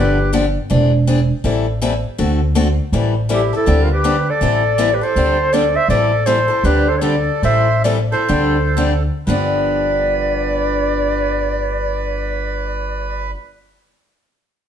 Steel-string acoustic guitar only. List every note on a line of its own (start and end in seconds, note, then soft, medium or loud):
0.00 0.17 D3 medium
0.00 0.17 F3 medium
0.00 0.17 B3 medium
0.00 0.18 D4 medium
0.00 0.18 G4 medium
0.33 0.44 D3 medium
0.33 0.44 F3 medium
0.33 0.44 B3 medium
0.33 0.45 D4 medium
0.33 0.44 G4 medium
0.70 0.91 E3 medium
0.70 0.91 C4 medium
0.70 0.91 D4 medium
0.70 0.91 G#4 medium
1.07 1.18 E3 medium
1.07 1.18 C4 medium
1.07 1.19 D4 medium
1.07 1.19 G#4 medium
1.44 1.65 E3 medium
1.44 1.65 G3 medium
1.44 1.65 C4 medium
1.44 1.66 E4 medium
1.44 1.66 A4 medium
1.82 1.92 E3 medium
1.82 1.93 G3 medium
1.82 1.93 C4 medium
1.82 1.93 E4 medium
1.82 1.93 A4 medium
2.18 2.39 D3 medium
2.18 2.39 A3 medium
2.18 2.39 C4 medium
2.18 2.39 F#4 medium
2.18 2.40 A4 medium
2.55 2.66 D3 medium
2.55 2.66 A3 medium
2.55 2.67 C4 medium
2.55 2.67 F#4 medium
2.55 2.67 A4 medium
2.93 3.14 E3 medium
2.93 3.14 G3 medium
2.93 3.14 C4 medium
2.93 3.14 E4 medium
2.93 3.14 A4 medium
3.29 3.40 E3 medium
3.29 3.40 G3 medium
3.29 3.41 C4 medium
3.29 3.41 E4 medium
3.29 3.41 A4 medium
3.53 3.66 C4 soft
3.53 3.67 E4 soft
3.53 3.66 A4 soft
3.66 3.87 D3 medium
3.66 3.88 G3 medium
3.66 3.88 C4 medium
3.66 3.88 D4 medium
3.66 3.88 G4 medium
4.04 4.15 D3 medium
4.04 4.15 G3 medium
4.04 4.15 C4 medium
4.04 4.15 D4 medium
4.04 4.15 G4 medium
4.41 4.62 E3 medium
4.41 4.62 G3 medium
4.41 4.62 C4 medium
4.41 4.62 E4 medium
4.41 4.62 A4 medium
4.78 4.89 E3 medium
4.78 4.89 G3 medium
4.78 4.89 C4 medium
4.78 4.89 E4 medium
4.78 4.89 A4 medium
5.01 5.16 C4 soft
5.01 5.15 E4 soft
5.01 5.14 A4 soft
5.16 5.36 D3 medium
5.16 5.37 G3 medium
5.16 5.37 C4 medium
5.16 5.37 D4 medium
5.16 5.37 G4 medium
5.53 5.63 D3 medium
5.53 5.64 G3 medium
5.53 5.64 C4 medium
5.53 5.64 D4 medium
5.53 5.64 G4 medium
5.90 6.10 E3 medium
5.90 6.10 G3 medium
5.90 6.11 C4 medium
5.90 6.11 E4 medium
5.90 6.11 A4 medium
6.26 6.37 E3 medium
6.26 6.38 G3 medium
6.26 6.38 C4 medium
6.26 6.38 E4 medium
6.26 6.38 A4 medium
6.48 6.64 C4 soft
6.48 6.63 E4 soft
6.48 6.63 A4 soft
6.64 6.86 D3 medium
6.64 6.86 G3 medium
6.64 6.86 C4 medium
6.64 6.86 D4 medium
6.64 6.87 G4 medium
7.01 7.14 D3 medium
7.01 7.14 G3 medium
7.01 7.14 C4 medium
7.01 7.14 D4 medium
7.01 7.15 G4 medium
7.43 7.67 E3 medium
7.43 7.67 G3 medium
7.43 7.67 C4 medium
7.43 7.67 E4 medium
7.43 7.67 A4 medium
7.84 7.98 E3 medium
7.84 7.98 G3 medium
7.84 7.98 C4 medium
7.84 7.98 E4 medium
7.84 7.98 A4 medium
8.12 8.28 C4 soft
8.12 8.29 E4 soft
8.12 8.29 A4 soft
8.29 8.55 D3 medium
8.29 8.56 G3 medium
8.29 8.56 C4 medium
8.29 8.56 D4 medium
8.29 8.56 G4 medium
8.77 8.92 D3 medium
8.77 8.92 G3 medium
8.77 8.92 C4 medium
8.77 8.92 D4 medium
8.77 8.92 G4 medium
9.27 13.35 G2 medium
9.27 13.36 D3 medium
9.27 13.37 F3 medium
9.27 13.37 B3 medium
9.27 13.38 D4 medium
9.27 13.38 G4 medium